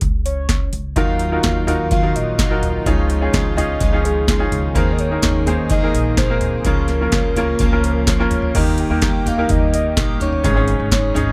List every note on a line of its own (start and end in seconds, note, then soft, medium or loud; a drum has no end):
0.01 0.69 C#2 medium
0.01 kick loud
0.01 closed hi-hat medium
0.25 0.70 C#5 loud
0.25 closed hi-hat medium
0.49 kick medium
0.49 snare medium
0.49 closed hi-hat medium
0.73 0.95 C#2 medium
0.73 closed hi-hat medium
0.96 1.41 D#2 medium
0.96 1.49 D#3 medium
0.96 1.64 D#3 medium
0.96 6.61 D#3 medium
0.96 2.84 F#3 medium
0.96 1.42 F#3 medium
0.96 2.84 A#3 medium
0.96 1.43 A#3 medium
0.96 1.24 D#4 medium
0.96 1.45 D#4 medium
0.96 4.72 F4 medium
0.96 1.24 F4 medium
0.96 1.46 F4 medium
0.96 1.25 F#4 medium
0.96 1.25 A#4 medium
0.96 1.87 F5 loud
0.96 kick medium
0.96 closed hi-hat medium
1.19 closed hi-hat medium
1.32 1.60 D#4 medium
1.32 1.60 F4 medium
1.32 1.60 F#4 medium
1.32 1.60 A#4 medium
1.43 2.11 D#2 medium
1.43 1.67 F#3 medium
1.43 1.68 A#3 medium
1.43 1.67 D#4 medium
1.43 1.66 F4 medium
1.43 kick medium
1.43 snare medium
1.43 closed hi-hat medium
1.67 1.91 A#3 soft
1.67 1.95 D#4 medium
1.67 1.91 D#4 soft
1.67 1.91 F4 medium
1.67 1.95 F4 medium
1.67 1.95 F#4 medium
1.67 1.96 A#4 medium
1.67 closed hi-hat medium
1.67 floor tom soft
1.91 2.44 D#3 medium
1.91 2.37 F#3 medium
1.91 2.38 A#3 medium
1.91 2.40 D#4 medium
1.91 2.41 F4 medium
1.91 2.17 F5 loud
1.91 kick loud
1.91 closed hi-hat medium
2.02 2.40 F#3 medium
2.02 2.40 D#4 medium
2.02 2.40 F4 medium
2.02 2.41 A#4 medium
2.15 2.82 A#1 medium
2.15 2.88 D#5 loud
2.15 closed hi-hat medium
2.38 2.86 F#3 medium
2.38 2.86 A#3 medium
2.38 2.87 D#4 medium
2.38 2.86 F4 medium
2.38 kick loud
2.38 snare medium
2.38 closed hi-hat medium
2.50 2.78 D#4 medium
2.50 2.78 F4 medium
2.50 2.79 F#4 medium
2.50 2.79 A#4 medium
2.63 closed hi-hat medium
2.63 floor tom medium
2.86 3.30 C#2 medium
2.86 3.33 C#3 medium
2.86 3.53 C#3 medium
2.86 3.32 F3 medium
2.86 4.74 G#3 medium
2.86 3.34 G#3 medium
2.86 4.73 C#4 medium
2.86 3.14 C#4 medium
2.86 3.14 D#4 medium
2.86 3.34 D#4 medium
2.86 3.14 F4 medium
2.86 3.34 F4 medium
2.86 3.14 G#4 medium
2.86 3.34 C#5 medium
2.86 kick medium
2.86 closed hi-hat medium
3.10 closed hi-hat medium
3.21 3.49 C#4 medium
3.21 3.49 D#4 medium
3.21 3.50 F4 medium
3.21 3.50 G#4 medium
3.33 3.78 C#2 medium
3.33 3.57 F3 medium
3.33 3.58 G#3 medium
3.33 3.57 D#4 medium
3.33 3.55 F4 medium
3.33 kick medium
3.33 snare medium
3.33 closed hi-hat medium
3.57 3.80 G#3 soft
3.57 3.85 C#4 medium
3.57 3.85 D#4 medium
3.57 3.80 D#4 medium
3.57 3.81 F4 medium
3.57 3.85 F4 medium
3.57 3.85 G#4 medium
3.57 4.06 D#5 loud
3.57 closed hi-hat medium
3.57 floor tom soft
3.80 4.49 C#2 medium
3.80 4.28 C#3 medium
3.80 4.26 F3 medium
3.80 4.28 G#3 medium
3.80 4.29 D#4 medium
3.80 4.29 F4 medium
3.80 kick loud
3.80 closed hi-hat medium
3.93 4.30 C#4 medium
3.93 4.30 D#4 medium
3.93 4.30 F4 medium
3.93 4.30 G#4 medium
4.05 4.78 G#4 loud
4.05 closed hi-hat medium
4.27 4.75 F3 medium
4.27 4.75 G#3 medium
4.27 4.75 D#4 medium
4.27 4.76 F4 medium
4.27 kick medium
4.27 snare medium
4.27 closed hi-hat medium
4.39 4.68 C#4 medium
4.39 4.68 D#4 medium
4.39 4.68 F4 medium
4.39 4.68 G#4 medium
4.52 4.74 C#2 medium
4.52 closed hi-hat medium
4.52 floor tom medium
4.75 5.20 D#2 medium
4.75 5.21 D#3 medium
4.75 5.43 D#3 medium
4.75 6.63 G#3 medium
4.75 5.03 A#3 medium
4.75 5.23 A#3 medium
4.75 6.63 A#3 medium
4.75 5.03 D#4 medium
4.75 5.23 D#4 medium
4.75 5.03 G#4 medium
4.75 6.63 G#4 medium
4.75 5.24 G#4 medium
4.75 5.04 A#4 medium
4.75 4.94 C5 medium
4.75 kick medium
4.75 closed hi-hat medium
4.92 5.01 D#5 medium
4.99 5.71 C#5 medium
4.99 closed hi-hat medium
5.11 5.39 A#3 medium
5.11 5.39 D#4 medium
5.11 5.39 G#4 medium
5.11 5.39 A#4 medium
5.22 5.91 D#2 medium
5.22 5.46 D#3 medium
5.22 5.47 A#3 medium
5.22 5.46 D#4 medium
5.22 5.45 G#4 medium
5.22 kick medium
5.22 snare medium
5.22 closed hi-hat medium
5.46 5.74 A#3 medium
5.46 5.69 A#3 soft
5.46 5.75 D#4 medium
5.46 5.70 D#4 soft
5.46 5.70 G#4 soft
5.46 5.75 G#4 medium
5.46 5.75 C5 medium
5.46 closed hi-hat medium
5.46 floor tom medium
5.70 6.16 D#3 medium
5.70 6.18 A#3 medium
5.70 6.18 D#4 medium
5.70 6.19 G#4 medium
5.70 6.15 D#5 loud
5.70 kick loud
5.70 closed hi-hat medium
5.83 6.20 A#3 medium
5.83 6.20 D#4 medium
5.83 6.20 G#4 medium
5.83 6.20 A#4 medium
5.94 6.62 A#1 medium
5.94 closed hi-hat medium
6.17 6.65 D#3 medium
6.17 6.66 A#3 medium
6.17 6.66 D#4 medium
6.17 6.66 G#4 medium
6.17 6.67 C5 loud
6.17 kick loud
6.17 snare medium
6.17 closed hi-hat medium
6.30 6.58 A#3 medium
6.30 6.58 D#4 medium
6.30 6.58 G#4 medium
6.30 6.58 A#4 medium
6.41 closed hi-hat medium
6.41 floor tom medium
6.65 7.09 C#2 medium
6.65 8.53 C#3 medium
6.65 7.12 C#3 medium
6.65 7.33 C#3 medium
6.65 8.53 F3 medium
6.65 7.11 F3 medium
6.65 8.53 A#3 medium
6.65 6.93 A#3 medium
6.65 7.13 A#3 medium
6.65 6.94 C#4 medium
6.65 7.13 C#4 medium
6.65 8.53 F4 medium
6.65 6.94 F4 medium
6.65 7.13 F4 medium
6.65 8.08 A#4 medium
6.65 6.94 A#4 medium
6.65 kick medium
6.65 closed hi-hat medium
6.88 snare soft
6.88 closed hi-hat medium
7.01 7.29 A#3 medium
7.01 7.29 C#4 medium
7.01 7.29 F4 medium
7.01 7.29 A#4 medium
7.12 7.57 C#2 medium
7.12 7.36 F3 medium
7.12 7.36 A#3 medium
7.12 7.36 C#4 medium
7.12 7.35 F4 medium
7.12 kick medium
7.12 snare loud
7.12 closed hi-hat medium
7.36 7.65 A#3 medium
7.36 7.60 A#3 soft
7.36 7.65 C#4 medium
7.36 7.60 C#4 soft
7.36 7.60 F4 soft
7.36 7.65 F4 medium
7.36 7.65 A#4 medium
7.36 closed hi-hat medium
7.36 floor tom soft
7.59 8.28 C#2 medium
7.59 8.07 C#3 medium
7.59 8.06 F3 medium
7.59 8.08 A#3 medium
7.59 8.08 C#4 medium
7.59 8.08 F4 medium
7.59 kick loud
7.59 closed hi-hat medium
7.72 8.09 A#3 medium
7.72 8.09 C#4 medium
7.72 8.10 F4 medium
7.72 8.10 A#4 medium
7.84 closed hi-hat medium
8.07 8.55 F3 medium
8.07 8.55 A#3 medium
8.07 8.56 C#4 medium
8.07 8.56 F4 medium
8.07 8.52 C#5 medium
8.07 kick loud
8.07 snare medium
8.07 closed hi-hat medium
8.20 8.47 A#3 medium
8.20 8.47 C#4 medium
8.20 8.48 F4 medium
8.20 8.48 A#4 medium
8.31 8.53 C#2 medium
8.31 closed hi-hat medium
8.31 floor tom medium
8.42 floor tom medium
8.55 8.88 D#2 medium
8.55 9.02 D#3 medium
8.55 9.22 D#3 medium
8.55 11.32 D#3 medium
8.55 10.43 G3 medium
8.55 8.83 A#3 medium
8.55 10.43 A#3 medium
8.55 9.02 A#3 medium
8.55 8.83 D#4 medium
8.55 9.04 D#4 medium
8.55 8.83 G4 medium
8.55 10.43 G4 medium
8.55 9.03 G4 medium
8.55 8.83 A#4 medium
8.55 8.67 D#5 medium
8.55 kick medium
8.55 closed hi-hat medium
8.55 crash medium
8.78 9.29 G5 medium
8.78 closed hi-hat medium
8.90 9.23 D#2 medium
8.90 9.27 A#3 medium
8.90 9.28 D#4 medium
8.90 9.28 G4 medium
8.90 9.28 A#4 medium
9.02 9.26 D#3 medium
9.02 9.26 A#3 medium
9.02 9.26 D#4 medium
9.02 9.25 G4 medium
9.02 kick loud
9.02 snare loud
9.02 closed hi-hat medium
9.26 9.48 D#2 medium
9.26 9.96 A#3 soft
9.26 9.98 D#4 medium
9.26 9.97 G4 medium
9.26 9.50 F5 medium
9.26 closed hi-hat medium
9.26 floor tom medium
9.38 10.12 A#3 medium
9.38 10.12 D#4 medium
9.38 10.12 G4 medium
9.38 10.13 A#4 medium
9.49 9.94 D#2 medium
9.49 9.72 D#5 medium
9.49 kick loud
9.49 closed hi-hat medium
9.74 10.18 D#5 loud
9.74 closed hi-hat medium
9.96 10.21 A#1 medium
9.96 10.20 D#3 medium
9.96 10.21 A#3 medium
9.96 10.21 D#4 medium
9.96 10.19 G4 medium
9.96 kick loud
9.96 snare medium
9.96 closed hi-hat medium
10.20 10.43 G1 medium
10.20 10.45 A#3 soft
10.20 10.44 D#4 soft
10.20 10.44 G4 medium
10.20 10.88 C#5 medium
10.20 closed hi-hat medium
10.20 floor tom medium
10.33 floor tom medium
10.43 10.77 G#1 medium
10.43 10.91 G#2 medium
10.43 11.11 G#2 medium
10.43 10.92 C#3 medium
10.43 10.91 G#3 medium
10.43 11.32 G#3 medium
10.43 10.53 C#4 medium
10.43 11.32 C#4 medium
10.43 10.92 C#4 medium
10.43 10.53 D#4 medium
10.43 10.92 D#4 medium
10.43 10.53 G#4 medium
10.43 11.32 G#4 medium
10.43 10.93 G#4 medium
10.43 10.54 C#5 medium
10.43 kick loud
10.43 closed hi-hat medium
10.56 11.02 C#4 medium
10.56 11.02 D#4 medium
10.56 11.03 G#4 medium
10.56 11.03 C#5 medium
10.68 closed hi-hat medium
10.80 11.13 G#1 medium
10.91 11.15 G#3 medium
10.91 11.16 C#4 medium
10.91 11.15 D#4 medium
10.91 11.14 G#4 medium
10.91 11.17 C#5 medium
10.91 kick loud
10.91 snare loud
10.91 closed hi-hat medium
11.14 11.32 G#1 medium
11.14 11.32 G#3 soft
11.14 11.32 C#4 medium
11.14 11.32 C#4 soft
11.14 11.32 D#4 medium
11.14 11.32 G#4 medium
11.14 11.32 C#5 medium
11.14 11.32 D#5 loud
11.14 closed hi-hat medium
11.14 floor tom medium